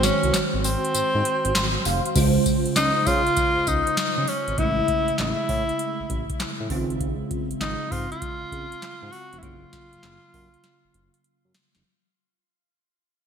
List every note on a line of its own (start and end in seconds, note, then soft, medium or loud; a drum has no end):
0.00 0.11 G#1 loud
0.00 2.11 D#3 medium
0.00 2.11 G#3 medium
0.00 2.12 F#4 medium
0.00 2.12 C5 medium
0.00 snare medium
0.00 closed hi-hat medium
0.00 tambourine medium
0.05 0.39 C#4 medium
0.23 0.31 C2 medium
0.23 closed hi-hat medium
0.34 0.42 G#1 soft
0.34 snare loud
0.34 clap medium
0.34 closed hi-hat medium
0.34 tambourine medium
0.54 0.76 G#1 medium
0.64 1.82 C4 medium
0.64 open hi-hat medium
0.64 tambourine medium
0.85 closed hi-hat medium
0.95 1.02 G#2 soft
0.95 closed hi-hat medium
0.95 tambourine medium
1.15 1.22 G#2 loud
1.25 closed hi-hat medium
1.45 1.53 G#1 medium
1.45 closed hi-hat medium
1.55 1.78 G#1 medium
1.55 1.83 C6 medium
1.55 snare loud
1.55 clap medium
1.55 closed hi-hat medium
1.55 tambourine medium
1.85 2.00 F1 loud
1.85 2.14 F5 medium
1.85 open hi-hat medium
1.85 tambourine medium
2.06 closed hi-hat medium
2.15 2.38 C#2 loud
2.15 4.54 C#3 medium
2.15 4.54 G#3 medium
2.15 4.55 F4 medium
2.15 4.54 C5 medium
2.15 kick loud
2.15 closed hi-hat medium
2.15 crash loud
2.15 tambourine medium
2.46 kick medium
2.46 closed hi-hat medium
2.46 tambourine medium
2.66 2.70 C#2 medium
2.66 closed hi-hat medium
2.76 2.91 C#2 medium
2.76 3.08 D#4 loud
2.76 snare loud
2.76 clap medium
2.76 closed hi-hat medium
2.76 tambourine medium
3.06 3.22 C#3 loud
3.06 3.69 F4 loud
3.06 kick loud
3.06 open hi-hat medium
3.06 tambourine medium
3.27 closed hi-hat soft
3.37 kick loud
3.37 closed hi-hat loud
3.37 tambourine medium
3.57 3.61 C#2 soft
3.67 3.82 C#2 medium
3.67 4.30 D#4 loud
3.67 kick medium
3.67 closed hi-hat medium
3.67 tambourine medium
3.87 closed hi-hat medium
3.97 snare loud
3.97 clap medium
3.97 closed hi-hat medium
3.97 tambourine medium
4.18 4.25 C#3 loud
4.28 4.60 C#4 medium
4.28 open hi-hat medium
4.48 4.56 G#1 loud
4.48 closed hi-hat medium
4.57 4.81 A1 loud
4.57 6.66 C#3 medium
4.57 6.66 G#3 medium
4.57 6.67 A3 medium
4.57 5.19 E4 loud
4.57 6.67 E4 medium
4.57 kick loud
4.57 closed hi-hat medium
4.88 kick medium
4.88 closed hi-hat medium
5.08 5.13 A1 soft
5.08 closed hi-hat medium
5.18 5.34 A1 medium
5.18 6.36 E4 medium
5.18 snare loud
5.18 clap medium
5.18 closed hi-hat medium
5.49 5.64 A2 loud
5.49 kick loud
5.49 open hi-hat medium
5.69 closed hi-hat soft
5.79 closed hi-hat loud
6.00 6.04 A1 soft
6.09 6.24 A1 medium
6.09 kick medium
6.09 closed hi-hat medium
6.30 kick medium
6.30 closed hi-hat medium
6.40 snare loud
6.40 clap medium
6.40 closed hi-hat medium
6.60 6.68 A2 loud
6.69 7.15 G#1 loud
6.69 9.08 C#3 medium
6.69 9.09 G#3 medium
6.69 9.09 C4 medium
6.69 9.09 F4 medium
6.69 kick medium
6.69 open hi-hat medium
6.90 closed hi-hat medium
7.01 kick loud
7.01 closed hi-hat medium
7.31 kick medium
7.31 closed hi-hat medium
7.51 7.55 G#1 soft
7.51 closed hi-hat medium
7.61 7.76 G#1 medium
7.61 7.93 D#4 medium
7.61 snare loud
7.61 clap medium
7.61 closed hi-hat medium
7.92 8.06 G#2 loud
7.92 8.11 F4 medium
7.92 kick medium
7.92 open hi-hat medium
8.12 9.14 F4 loud
8.12 closed hi-hat soft
8.22 kick loud
8.22 closed hi-hat medium
8.42 8.46 C#2 soft
8.52 8.67 C#2 medium
8.52 kick medium
8.52 closed hi-hat medium
8.72 closed hi-hat medium
8.82 snare loud
8.82 clap medium
8.82 closed hi-hat medium
9.02 9.10 G#2 loud
9.12 9.40 F#4 loud
9.12 open hi-hat medium
9.33 9.41 F1 medium
9.33 closed hi-hat medium
9.39 11.81 C#3 medium
9.39 11.81 F#3 medium
9.39 9.44 E4 medium
9.39 11.25 F4 loud
9.43 9.66 F#1 loud
9.43 11.81 A#3 medium
9.43 11.82 F4 medium
9.43 kick loud
9.43 closed hi-hat medium
9.73 kick medium
9.73 snare medium
9.73 closed hi-hat medium
9.93 9.97 F#1 soft
9.93 closed hi-hat medium
10.03 10.18 F#1 medium
10.03 snare loud
10.03 clap medium
10.03 closed hi-hat medium
10.34 10.49 F#2 loud
10.34 kick loud
10.34 open hi-hat medium
10.54 closed hi-hat soft
10.64 snare medium
10.64 closed hi-hat medium
10.84 10.88 F#1 soft
10.94 11.09 F#1 medium
10.94 closed hi-hat medium
11.14 closed hi-hat medium
11.24 closed hi-hat medium
11.45 11.53 F#2 medium
11.54 snare loud
11.54 open hi-hat medium
11.75 11.83 F1 medium
11.75 snare medium
11.75 closed hi-hat medium